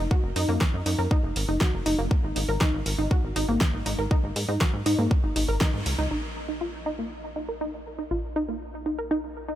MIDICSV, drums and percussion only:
0, 0, Header, 1, 2, 480
1, 0, Start_track
1, 0, Tempo, 500000
1, 106, Time_signature, 4, 2, 24, 8
1, 9171, End_track
2, 0, Start_track
2, 0, Title_t, "Drums"
2, 106, Note_on_c, 9, 36, 115
2, 202, Note_off_c, 9, 36, 0
2, 346, Note_on_c, 9, 46, 98
2, 442, Note_off_c, 9, 46, 0
2, 583, Note_on_c, 9, 38, 116
2, 586, Note_on_c, 9, 36, 109
2, 679, Note_off_c, 9, 38, 0
2, 682, Note_off_c, 9, 36, 0
2, 826, Note_on_c, 9, 46, 87
2, 922, Note_off_c, 9, 46, 0
2, 1066, Note_on_c, 9, 36, 121
2, 1162, Note_off_c, 9, 36, 0
2, 1306, Note_on_c, 9, 46, 100
2, 1402, Note_off_c, 9, 46, 0
2, 1543, Note_on_c, 9, 38, 112
2, 1546, Note_on_c, 9, 36, 113
2, 1639, Note_off_c, 9, 38, 0
2, 1642, Note_off_c, 9, 36, 0
2, 1786, Note_on_c, 9, 46, 87
2, 1882, Note_off_c, 9, 46, 0
2, 2026, Note_on_c, 9, 36, 114
2, 2122, Note_off_c, 9, 36, 0
2, 2266, Note_on_c, 9, 46, 95
2, 2362, Note_off_c, 9, 46, 0
2, 2503, Note_on_c, 9, 38, 120
2, 2506, Note_on_c, 9, 36, 108
2, 2599, Note_off_c, 9, 38, 0
2, 2602, Note_off_c, 9, 36, 0
2, 2746, Note_on_c, 9, 46, 88
2, 2842, Note_off_c, 9, 46, 0
2, 2986, Note_on_c, 9, 36, 114
2, 3082, Note_off_c, 9, 36, 0
2, 3226, Note_on_c, 9, 46, 105
2, 3322, Note_off_c, 9, 46, 0
2, 3463, Note_on_c, 9, 38, 115
2, 3466, Note_on_c, 9, 36, 110
2, 3559, Note_off_c, 9, 38, 0
2, 3562, Note_off_c, 9, 36, 0
2, 3706, Note_on_c, 9, 46, 86
2, 3802, Note_off_c, 9, 46, 0
2, 3946, Note_on_c, 9, 36, 114
2, 4042, Note_off_c, 9, 36, 0
2, 4186, Note_on_c, 9, 46, 104
2, 4282, Note_off_c, 9, 46, 0
2, 4424, Note_on_c, 9, 38, 122
2, 4426, Note_on_c, 9, 36, 114
2, 4520, Note_off_c, 9, 38, 0
2, 4522, Note_off_c, 9, 36, 0
2, 4666, Note_on_c, 9, 46, 95
2, 4762, Note_off_c, 9, 46, 0
2, 4906, Note_on_c, 9, 36, 124
2, 5002, Note_off_c, 9, 36, 0
2, 5145, Note_on_c, 9, 46, 99
2, 5241, Note_off_c, 9, 46, 0
2, 5383, Note_on_c, 9, 38, 120
2, 5386, Note_on_c, 9, 36, 115
2, 5479, Note_off_c, 9, 38, 0
2, 5482, Note_off_c, 9, 36, 0
2, 5626, Note_on_c, 9, 46, 88
2, 5722, Note_off_c, 9, 46, 0
2, 9171, End_track
0, 0, End_of_file